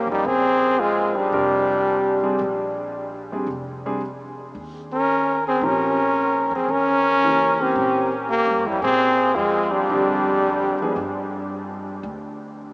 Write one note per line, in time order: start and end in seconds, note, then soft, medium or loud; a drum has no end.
0.07 0.23 F2 medium
0.07 0.28 D#4 medium
0.12 0.28 G3 medium
0.25 1.28 A#1 medium
0.25 0.82 C4 loud
0.25 0.81 G#4 loud
0.79 1.18 G#3 medium
0.79 1.17 F4 medium
1.16 2.77 G3 medium
1.16 2.77 D4 medium
1.32 2.36 F1 medium
1.32 2.16 C4 medium
1.32 2.16 D4 medium
1.32 2.16 G4 medium
1.32 2.16 A#4 medium
2.23 2.38 G3 medium
2.23 2.38 C4 medium
2.23 2.38 D4 medium
2.23 2.38 G#4 medium
2.39 3.43 A#1 medium
3.32 3.46 G3 medium
3.32 3.47 C4 medium
3.32 3.47 D4 medium
3.32 3.47 G#4 medium
3.46 4.50 F1 medium
3.86 4.00 G3 medium
3.86 4.00 C4 medium
3.86 4.00 D4 medium
3.86 4.00 G#4 medium
4.55 5.58 D#2 medium
4.93 5.42 C#4 medium
4.93 5.42 A#4 medium
5.47 5.67 C4 medium
5.47 5.66 G#4 medium
5.61 6.48 A#2 medium
5.61 5.96 F3 medium
5.61 5.96 C4 medium
5.61 5.96 C#4 medium
5.61 5.96 G4 medium
5.61 6.54 A#4 medium
5.66 6.54 C#4 medium
6.51 6.67 F2 medium
6.55 6.74 C4 medium
6.55 6.72 G#4 medium
6.68 7.72 E2 medium
6.68 7.64 C#4 loud
6.68 7.63 A#4 medium
7.24 8.07 C#3 medium
7.24 8.06 E3 medium
7.24 8.07 A#3 medium
7.24 8.07 G4 medium
7.61 8.14 C4 medium
7.61 8.14 G4 medium
7.76 8.43 A#2 medium
8.30 8.69 A#3 medium
8.30 8.69 G4 medium
8.47 8.64 G2 medium
8.65 8.82 F2 medium
8.65 8.83 G3 medium
8.65 8.82 E4 medium
8.82 9.32 A#2 medium
8.82 9.37 C4 loud
8.82 9.37 G#4 medium
9.35 9.86 F2 medium
9.35 9.74 G#3 medium
9.35 9.73 F4 medium
9.71 11.33 G3 medium
9.71 11.33 D4 medium
9.89 10.76 F2 medium
9.89 10.73 D3 medium
9.89 10.73 G3 medium
9.89 10.73 C4 medium
9.89 10.74 G4 medium
10.79 10.96 F3 medium
10.79 10.96 G#3 medium
10.79 10.96 B3 medium
10.79 10.96 G#4 medium
10.79 muted upright bass stroke soft
10.96 11.99 G2 medium
12.03 12.73 D2 medium